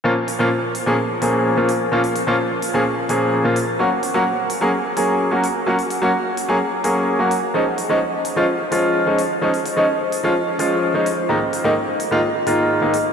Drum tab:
HH |--o---o---o---o-|-oo---o---o---o-|--o---o---o---o-|-oo---o---o---o-|

HH |--o---o---o---o-|-oo---o---o---o-|--o---o---o---o-|